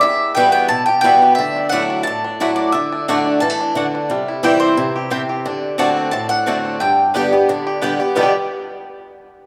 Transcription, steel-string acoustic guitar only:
\new Staff \with { instrumentName = "Steel-string acoustic guitar" } { \clef bass \time 4/4 \key g \major \tempo 4 = 177 << { r4 <e g b fis'>4 r4 <e g b fis'>8 <b fis'>8 | r4 <fis a e' fis'>4 r4 <fis a e' fis'>4 | r4 <d a d' fis'>4 r2 | r4 <e g c' e'>4 r2 |
r4 <d a c' fis'>4 r4 <d a c' fis'>4 | r4 <d g b g'>8 <b g'>8 r4 <d g b g'>8 <b g'>8 | <g, b, d g b g'>8 r2. r8 | } \\ { e,2 b,2 | d2 a,2 | d2 e4 d4 | c2 c4 c4 |
d2 a,2 | g,2 d2 | r1 | } >> }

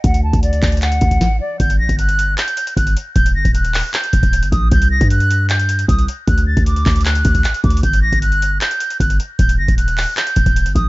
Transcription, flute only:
\new Staff \with { instrumentName = "Flute" } { \time 4/4 \key d \phrygian \tempo 4 = 154 fis''8 a''8 d''4 fis''4. d''8 | g'''8 bes'''8 fis'''4 g'''4 fis'''8 r8 | g'''8 bes'''8 fis'''4 g'''4. ees'''8 | g'''8 bes'''8 fis'''4 g'''4 ees'''8 r8 |
fis'''8 a'''8 d'''4 fis'''4. d'''8 | g'''8 bes'''8 fis'''4 g'''4 fis'''8 r8 | g'''8 bes'''8 fis'''4 g'''4. ees'''8 | }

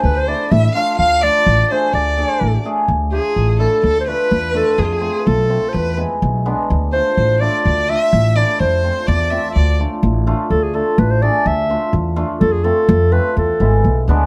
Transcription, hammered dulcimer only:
\new Staff \with { instrumentName = "Hammered dulcimer" } { \time 2/4 \tempo 4 = 126 r8 <a d' e'>16 r8. <a d' f'>16 r16 | r8 <a d' f'>16 r8. <a d' gis'>16 r16 | r8 <a d' gis'>16 r8. <a d' gis'>16 r16 | r8 <a d' f'>16 r8. <a d' e'>16 r16 |
r8 <a d' f'>16 r8. <a d' f'>16 r16 | r8 <a c' f'>16 r8. <a c' f'>16 r16 | r8 <gis b e'>16 r8. <gis b d'>16 r16 | r8 <a d' f'>16 r8. <a d' f'>16 r16 |
r8 <a d' f'>16 r8. <a d' e'>16 r16 | r8 <a c' f'>16 r8. <a c' f'>16 r16 | r8 <a d' f'>16 r8. <a d' f'>16 r16 | r8 <a d' f'>16 r8. <a d' gis'>16 r16 |
r8 <a d' f'>16 r8. <a d' f'>16 r16 | r8 <a c' f'>16 r8. <a c' f'>16 r16 | r8 <gis b e'>16 r8. <gis b d'>16 r16 | }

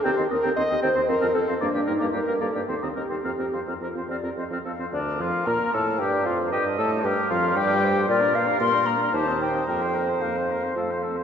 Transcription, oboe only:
\new Staff \with { instrumentName = "Oboe" } { \time 3/4 \key bes \major \tempo 4 = 112 g''16 c''16 ees''16 g''16 c''16 ees''16 g''16 c''16 c''16 f''16 a'16 c''16 | d''16 g'16 bes'16 d''16 g'16 bes'16 d''16 g'16 c''16 ees''16 bes'16 c''16 | f''16 bes'16 c''16 f''16 bes'16 c''16 f''16 bes'16 c''16 f''16 a'16 c''16 | d'8 f'8 bes'8 a'8 g'8 f'8 |
g'8 a'8 g'8 f'8 g'4 | f'16 bes'16 f'16 bes'16 f'16 bes'16 f'16 bes'16 g'16 ees'16 g'16 ees'16 | bes'16 c''16 bes'16 c''16 bes'16 c''16 bes'16 c''16 a'16 c''16 a'16 c''16 | }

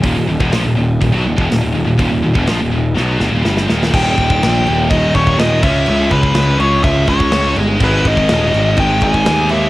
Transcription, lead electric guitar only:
\new Staff \with { instrumentName = "Lead electric guitar" } { \time 4/4 \tempo 4 = 124 r1 | r1 | g''2 ees''8 des''8 ees''8 fes''8~ | fes''8 ces''4 des''8 fes''8 des''4 r8 |
ces''8 ees''4. g''8 aes''4 fes''8 | }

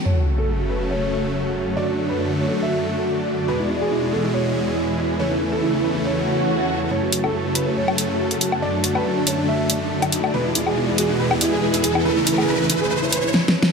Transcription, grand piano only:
\new Staff \with { instrumentName = "Grand piano" } { \time 4/4 \key fis \minor \tempo 4 = 140 cis''16 fis'16 fis'16 a'16 fis'16 fis'16 b'16 fis'16 cis''4.~ cis''16 r16 | d''16 d'16 d'16 b'16 d'16 d'16 cis''16 d'16 e''4.~ e''16 r16 | b'16 e'16 e'16 gis'16 e'16 e'16 a'16 e'16 cis''4.~ cis''16 r16 | cis''16 e'16 e'16 a'16 e'16 e'16 b'16 e'16 cis''4.~ cis''16 r16 |
cis''16 fis'16 fis'16 a'16 fis'16 fis'16 b'16 fis'16 cis''4.~ cis''16 r16 | d''16 d'16 d'16 b'16 d'16 d'16 cis''16 d'16 e''4.~ e''16 r16 | b'16 e'16 e'16 gis'16 e'16 e'16 gis'16 e'16 b'16 e'16 e'16 gis'16 e'16 e'16 gis'16 e'16 | b'16 e'16 e'16 gis'16 b'16 e'16 e'16 gis'16 b'16 e'16 b'16 e'16 r4 | }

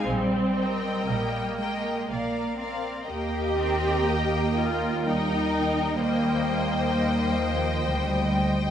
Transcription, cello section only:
\new Staff \with { instrumentName = "Cello section" } { \clef bass \time 3/4 \key ees \major \tempo 4 = 62 g4 g8 aes8 bes8 c'8 | bes8 c'8 bes4 g4~ | g4 g8 f8 g4 | }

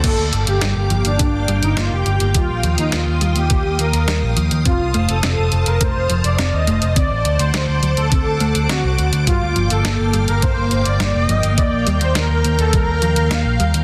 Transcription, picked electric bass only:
\new Staff \with { instrumentName = "Picked electric bass" } { \clef bass \time 4/4 \key g \minor \tempo 4 = 104 g,,16 d,16 g,,16 g,,16 g,,16 g,,16 g,,16 g,,16 g,,16 g,,16 g,,16 g,,16 g,,16 f,,16 g,,16 g,,16 | ees,16 bes,,16 ees,16 ees,16 ees,16 ees,16 ees,16 ees,16 ees,16 ees,16 ees,16 ees,16 ees,16 bes,,16 ees,16 ees,16 | f,,16 c,16 f,,16 f,,16 f,,16 f,,16 f,,16 f,,16 f,,16 f,,16 f,,16 f,,16 f,,16 ees,16 f,,16 f,,16 | d,16 a,,16 d,16 d,16 d,16 d,16 d,16 d,16 d,16 d,16 d,16 d,16 d,16 c,16 d,16 d,16 |
g,,16 d,16 g,,16 g,,16 g,,16 g,,16 g,,16 g,,16 g,,16 g,,16 g,,16 g,,16 g,,16 f,,16 g,,16 g,,16 | ees,16 bes,,16 ees,16 ees,16 ees,16 ees,16 ees,16 ees,16 ees,16 ees,16 ees,16 ees,16 ees,16 bes,,16 ees,16 ees,16 | }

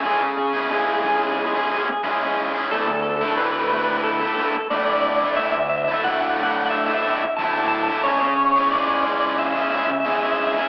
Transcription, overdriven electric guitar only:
\new Staff \with { instrumentName = "Overdriven electric guitar" } { \time 4/4 \key cis \phrygian \tempo 4 = 90 <cis gis cis' e' gis'>8. <cis' e' gis'>16 <cis gis cis' e' gis'>8 <gis cis' e' gis'>8. <cis' e' gis'>16 <gis cis' e' gis'>8 <cis gis cis' e' gis'>16 <cis' e' gis'>8 <cis' e' gis'>16 | <d, a, d a e'>8. <d a e'>16 <d, a, d a e'>8 <a, d a e'>8. <d a e'>16 <a, d a e'>8 <d, a, d a e'>16 <d a e'>8 <d a e'>16 | <d, a, d a e'>8. <d a e'>16 <d, a, d a e'>8 <a, d a e'>8. <d a e'>16 <a, d a e'>8 <d, a, d a e'>16 <d a e'>8 <d a e'>16 | <cis gis cis' e' gis'>8. <cis' e' gis'>16 <cis gis cis' e' gis'>8 <gis cis' e' gis'>8. <cis' e' gis'>16 <gis cis' e' gis'>8 <cis gis cis' e' gis'>16 <cis' e' gis'>8 <cis' e' gis'>16 | }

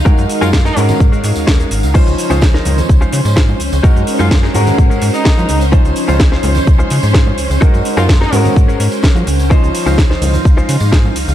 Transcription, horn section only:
\new Staff \with { instrumentName = "Horn section" } { \time 4/4 \key des \major \tempo 4 = 127 r8. f'16 f'16 ees'16 r2 r8 | r1 | r8. f'16 f'16 r4. ees'4 r16 | r1 |
r8. f'16 f'16 ees'16 r2 r8 | r1 | }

